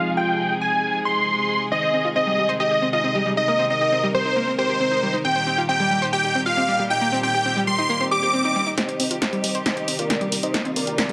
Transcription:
Already playing: C3 F3 G#3 D#4 F4 G#4 F5
0.17 G5
0.61 G#5
1.05 C6
1.72 C3 D#3 C4 D#4 D#5
1.83 C5
1.94 C4
2.05 F4
2.16 C4 D#5
2.27 G3
2.38 G3
2.49 C5
2.60 G4 D#5
2.71 G4
2.82 C4
2.93 F4 D#5
3.04 C4
3.15 G3
3.26 G3
3.37 D#4 D#5
3.48 A#3 A#4
3.59 C4
3.70 C4 D#5
3.81 G4
3.92 C4
4.03 G3
4.14 G3 C5
4.25 D#4
4.36 A#3
4.47 C4
4.58 G4 C5
4.70 G4
4.81 C4
4.92 D#4
5.03 G3
5.14 D#4
5.25 A#2 G3 C4 G4 G5
5.36 C5
5.47 C4
5.58 F4
5.69 C4 G5
5.80 G3
5.91 G3
6.02 C5
6.13 G4 G5
6.24 G4
6.35 C4
6.46 F4 F5
6.57 C4
6.68 G3
6.79 G3
6.90 D#4 G5
7.01 A#3
7.12 C4
7.23 C4 G5
7.34 G4
7.45 C4
7.56 G3
7.67 G3 C6
7.78 D#4
7.89 A#3, swell
8.01 C4
8.11 G4 D6
8.23 G4
8.34 C4
8.45 D#4
8.56 G3
8.67 D#4
8.78 C3 D#3 G3 C4 D#4 G4 C5 D#5, snare, closed hi-hat
8.89 C5, closed hi-hat
9.00 C4, open hi-hat
9.11 F4, closed hi-hat
9.22 C4 C5 D#5, snare, closed hi-hat
9.33 G3, closed hi-hat
9.44 G3, open hi-hat
9.55 C5, closed hi-hat
9.66 G4 C5 D#5, snare, closed hi-hat
9.77 G4, closed hi-hat
9.88 C4, open hi-hat
9.99 F4 A#4 D5, closed hi-hat
10.10 C4, snare, closed hi-hat
10.21 G3, closed hi-hat
10.32 G3, open hi-hat
10.43 D#4 C5 D#5, closed hi-hat
10.54 A#3 F4, snare, closed hi-hat
10.65 C4, closed hi-hat
10.76 C4 A#4 D5, open hi-hat
10.87 G4, closed hi-hat
10.98 C4, snare, closed hi-hat
11.09 G3, closed hi-hat

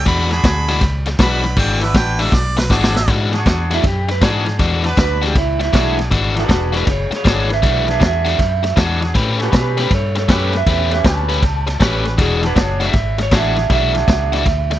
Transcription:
0.06 E2 E3 G#3 D4 F#4 B5, kick, snare, ride
0.30 D4 F#4 G#4 B5, muted overdriven electric guitar stroke, snare, ride
0.44 D2, muted overdriven electric guitar stroke, kick, snare, ride
0.68 E3 G#3 D4 F#4, snare, ride
0.81 C#2, muted overdriven electric guitar stroke, kick, snare, ride
1.06 muted overdriven electric guitar stroke, snare, ride
1.18 B1 E3 G#3 D4 F#4 B4 B5, kick, snare, ride
1.43 muted overdriven electric guitar stroke, snare, ride
1.56 G#1 E3 G#3 D4 F#4 G5, kick, snare, ride
1.80 D4 F#4 B4 E5, muted overdriven electric guitar stroke, snare, ride
1.94 A1 G5, muted overdriven electric guitar stroke, kick, snare, ride
2.19 E3 G#3 D4 F#4 E5, snare, ride
2.32 B1 D5, muted overdriven electric guitar stroke, kick, snare
2.57 B4, muted overdriven electric guitar stroke, snare
2.69 G#1 E3 G#3 D4 F#4 G#4 D5, kick, snare
2.84 snare
2.95 E5, muted overdriven electric guitar stroke, snare
3.08 G#2 E3 G#3 D4 F#4, kick, snare, ride
3.32 D4 F#4 G#4, muted overdriven electric guitar stroke, snare, ride
3.46 E2, muted overdriven electric guitar stroke, kick, snare, ride
3.71 E3 G#3 D4 E4 F#4, snare, ride
3.84 F#2 G4, muted overdriven electric guitar stroke, kick, snare, ride
4.08 B4, muted overdriven electric guitar stroke, snare, ride
4.21 G#2 E3 G#3 D4 F#4 G#4 D5, kick, snare, ride
4.46 muted overdriven electric guitar stroke, snare, ride
4.59 E2 E3 G#3 D4 F#4, kick, snare, ride
4.83 D4 F#4 B4, muted overdriven electric guitar stroke, snare, ride
4.97 D2 B4, muted overdriven electric guitar stroke, kick, snare, ride
5.22 E3 G#3 D4 F#4 G4, snare, ride
5.35 C#2 E4, muted overdriven electric guitar stroke, kick, snare, ride
5.60 E4, muted overdriven electric guitar stroke, snare, ride
5.73 B1 E3 G#3 D4 F#4 G#4, kick, snare, ride
5.98 muted overdriven electric guitar stroke, snare, ride
6.11 G#1 E3 G#3 D4 F#4, kick, snare, ride
6.35 D4 F#4 G#4, muted overdriven electric guitar stroke, snare, ride
6.39 B4
6.49 E1 F#4, muted overdriven electric guitar stroke, kick, snare, ride
6.53 B4
6.73 E3 G#3 D4 F#4, snare, ride
6.77 B4
6.86 F#1 G#4, muted overdriven electric guitar stroke, kick, snare, ride
6.91 C#5
7.11 muted overdriven electric guitar stroke, muted fingered electric bass stroke, snare, ride
7.15 G#4 C#5
7.24 G#1 E3 G#3 D4 F#4 G#4, kick, snare, ride
7.28 G#4 C#5
7.49 B4, muted overdriven electric guitar stroke, snare, ride
7.54 E5
7.62 B1 E3 G#3 D4 F#4, kick, snare, ride
7.66 B4 E5
7.86 D4 F#4 G#4, muted overdriven electric guitar stroke, snare, ride
7.91 B4 E5
8.00 E2, muted overdriven electric guitar stroke, kick, snare, ride
8.06 E5
8.25 E3 G#3 D4 F#4, snare, ride
8.38 F#2, muted overdriven electric guitar stroke, kick, snare, ride
8.63 muted overdriven electric guitar stroke, snare, ride
8.76 E2 E3 G#3 D4 F#4 G#4, kick, snare, ride
9.01 muted overdriven electric guitar stroke, snare, ride
9.15 A2 A3 C#4 G4 B4, kick, snare, ride
9.39 C#4 G4 B4, muted overdriven electric guitar stroke, snare, ride
9.43 G4 B4
9.52 B2 G4, muted overdriven electric guitar stroke, kick, snare, ride
9.57 B4
9.77 A3 C#4 G4 B4, snare, ride
9.91 G2 A4, muted overdriven electric guitar stroke, kick, snare, ride
9.95 C#5
10.15 A4, muted overdriven electric guitar stroke, snare, ride
10.20 C#5
10.28 F#2 A3 C#4 G4 A4 B4 C#5, kick, snare, ride
10.53 B4 E5, muted overdriven electric guitar stroke, snare, ride
10.66 E2 A3 C#4 G4 B4 E5, kick, snare, ride
10.90 C#4 G4 B4 E5, muted overdriven electric guitar stroke, snare, ride
11.04 D2 A5, muted overdriven electric guitar stroke, kick, snare, ride
11.29 A3 C#4 G4 B4, snare, ride
11.42 C#2, muted overdriven electric guitar stroke, kick, snare, ride
11.67 muted overdriven electric guitar stroke, snare, ride
11.79 A1 A3 C#4 G4 B4, kick, snare, ride
12.05 muted overdriven electric guitar stroke, snare, ride
12.18 E1 E3 G#3 D4 F#4 G#4, kick, snare, ride
12.42 D4 F#4 G#4, muted overdriven electric guitar stroke, snare, ride
12.46 B4
12.56 F#1 C#5, muted overdriven electric guitar stroke, kick, snare, ride
12.80 E3 G#3 D4 F#4, snare, ride
12.85 E5
12.93 G#1, muted overdriven electric guitar stroke, kick, snare, ride
13.18 muted overdriven electric guitar stroke, snare, ride
13.23 C#5
13.31 A1 E3 G#3 D4 F#4 G#4, kick, snare, ride
13.36 E5
13.56 muted overdriven electric guitar stroke, snare, ride
13.70 B1 E3 G#3 D4 F#4 E5, kick, snare, ride
13.93 D4 F#4 G#4, muted overdriven electric guitar stroke, snare, ride
14.08 C#2, muted overdriven electric guitar stroke, kick, snare, ride
14.32 E3 G#3 D4 F#4, snare, ride
14.46 D2, muted overdriven electric guitar stroke, kick, snare, ride
14.71 muted overdriven electric guitar stroke, snare, ride

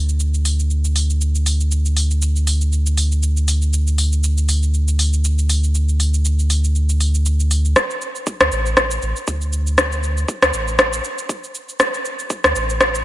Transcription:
Already playing: D2
0.09 shaker
0.20 shaker
0.34 shaker
0.45 open hi-hat, shaker
0.59 shaker
0.70 shaker
0.85 shaker
0.96 open hi-hat, shaker
1.10 shaker
1.21 shaker
1.35 shaker
1.46 open hi-hat, shaker
1.60 shaker
1.71 shaker
1.85 shaker
1.97 open hi-hat, shaker
2.11 shaker
2.22 shaker
2.36 shaker
2.47 open hi-hat, shaker
2.61 shaker
2.72 shaker
2.86 shaker
2.97 open hi-hat, shaker
3.12 shaker
3.23 shaker
3.37 shaker
3.48 open hi-hat, shaker
3.62 shaker
3.73 shaker
3.87 shaker
3.98 open hi-hat, shaker
4.12 shaker
4.24 shaker
4.38 shaker
4.49 open hi-hat, shaker
4.63 shaker
4.74 shaker
4.88 shaker
4.99 open hi-hat, shaker
5.13 shaker
5.24 shaker
5.38 shaker
5.49 open hi-hat, shaker
5.64 shaker
5.75 shaker
5.89 shaker
6.00 open hi-hat, shaker
6.14 shaker
6.25 shaker
6.39 shaker
6.50 open hi-hat, shaker
6.64 shaker
6.75 shaker
6.89 shaker
7.00 open hi-hat, shaker
7.14 shaker
7.26 shaker
7.40 shaker
7.51 open hi-hat, shaker
7.65 shaker
7.76 kick, cross-stick, shaker
7.90 shaker
8.01 shaker
8.15 shaker
8.27 kick, shaker
8.41 D2, cross-stick, shaker
8.52 A1, shaker
8.66 shaker
8.77 kick, cross-stick, shaker
8.91 shaker
9.02 A1, shaker
9.16 shaker
9.27 D2, kick, shaker
9.41 shaker
9.53 shaker
9.67 shaker
9.78 kick, cross-stick, shaker
9.92 shaker
10.03 shaker
10.17 shaker
10.28 kick, shaker
10.42 D2, cross-stick, shaker
10.53 A1, shaker
10.68 shaker
10.79 kick, cross-stick, shaker
10.93 shaker
11.04 shaker
11.18 shaker
11.29 kick, shaker
11.44 shaker
11.55 shaker
11.69 shaker
11.80 kick, cross-stick, shaker
11.94 shaker
12.05 shaker
12.19 shaker
12.30 kick, shaker
12.44 D2, cross-stick, shaker
12.55 A1, shaker
12.70 shaker
12.81 kick, cross-stick, shaker
12.95 shaker

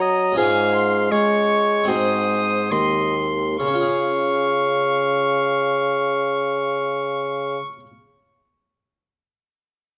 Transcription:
Already playing: F#3 C#4 F#4 A#4 A#5
0.01 D#5
0.32 G#3 C#4 F4
0.37 G#2 G#4 F5 G#5
0.75 C6
1.12 G#3 C#5 C#6
1.84 G#3 C4 F#4
1.88 G#2 G#4 C5 D#6
2.71 D#2 D#5 C6
3.59 C#3 F5 C#6
3.67 C#4
3.74 F4
3.81 G#4
3.88 F5

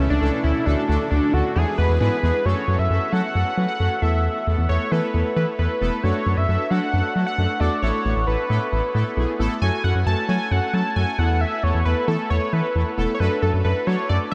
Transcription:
Already playing: B2 A3 B3 E4
0.00 A3 C#4 E4 A4
0.10 C#2 D4
0.21 C#2 A3 C#4 E4 A4
0.43 D2 A3 C#4 E4 A4
0.66 D2 D3 A3 D4 F#4 A4
0.88 D2 A3 D4 F#4 A4
1.11 D2 A3 D4 F#4 A4
1.33 D2 A3 D4 F#4 A4
1.55 E2 E3 G#3 B3 E4 G#4 B4
1.78 E2 G#3 B3 E4 G#4 B4
1.89 E2
2.00 G#2 G#3 B3 E4 G#4 B4
2.22 E2 G#3 B3 E4 G#4
2.45 F#2 A3 C#4 F#4 A4 C#5
2.67 F#2 A3 C#4 F#4 A4
2.79 F#2 E5
2.90 F#2 A3 C#4 F#4 A4
3.12 F#3 A3 C#4 F#4 A4 F#5
3.34 F#2 A3 C#4 F#4 A4
3.57 F#3 A3 C#4 F#4 B4
3.68 F#5
3.79 F#2 A3 C#4 F#4 A4
4.02 E2 A3 B3 E4 A4 E5
4.46 E2 A3 B3 E4 A4
4.58 E2
4.69 E2 A3 B3 E4 A4 C#5
4.91 E3 A3 B3 E4 A4 B4
5.14 E2 A3 B3 E4 A4
5.36 E3 A3 B3 E4 A4 B4
5.58 E2 A3 B3 E4 A4 B4
5.81 E1 A3 B3 E4 A4
6.03 F#2 A3 D4 F#4 A4 C#5
6.25 F#2 A3 D4 F#4 A4
6.37 F#2 E5
6.48 F#2 A3 D4 F#4 A4
6.70 F#3 A3 D4 F#4 A4 F#5
6.93 F#2 A3 D4 F#4 A4
7.15 F#3 A3 D4 F#4 A4
7.26 F#5
7.38 F#2 A3 D4 F#4 A4
7.60 E2 A3 D4 F#4 A4 D5
7.82 A1 A3 B3 E4 A4 C#5
8.05 A1 A3 B3 E4 A4
8.16 A1
8.27 A1 A3 B3 E4 A4 B4
8.49 A2 A3 B3 E4 A4
8.72 A1 A3 B3 E4 A4
8.94 A2 A3 B3 E4 A4
9.16 B1 A3 B3 E4 G#4
9.39 A1 A3 B3 E4 A4
9.61 F#2 A3 C#4 F#4 A4 G#5
9.84 F#2 A3 C#4 F#4 A4 F#5
9.95 F#2
10.06 F#2 A3 C#4 F#4 A4 A5
10.29 F#3 A3 C#4 F#4 A4 G#5
10.51 F#2 A3 C#4 F#4 A4 F#5
10.73 F#3 A3 C#4 F#4 A4 A5
10.96 F#2 A3 C#4 F#4 A4 G#5
11.18 E2 A3 B3 E4 A4 F#5
11.41 E5
11.63 E2 A3 B3 E4 A4 C#5
11.74 E2
11.85 E2 A3 B3 E4 A4 B4
12.08 E3 A3 B3 E4 A4
12.30 E2 A3 B3 E4 A4 C#5
12.52 E3 A3 B3 E4 A4 B4
12.75 E2 A3 B3 E4 A4
12.97 E1 A3 B3 E4 A4
13.14 C#5
13.20 F#2 A3 D4 F#4 A4 B4
13.42 F#2 A3 D4 F#4 A4
13.53 F#2
13.64 F#2 A3 D4 F#4 A4 B4
13.87 F#3 A3 D4 F#4 A4 C#5
14.09 F#2 A3 D4 F#4 A4 D5

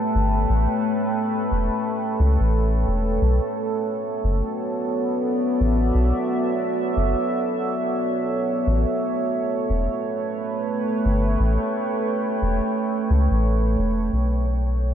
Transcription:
Already playing: A3 A4 B4 C#5 G5
0.15 G1
0.49 A1
1.51 E1
2.20 C#2
2.40 A1
2.88 E1
3.22 B1 B3
3.48 F#4
4.23 F#1 D5
4.51 E5
5.61 A1
5.94 B1
6.97 F#1
8.67 A1 A3
8.90 B4
9.70 E1
10.22 G5
11.05 G1
11.40 A1
12.42 E1
13.10 C#2
13.31 A1
13.78 E1
14.12 B1 B3
14.43 F#4
14.50 D5

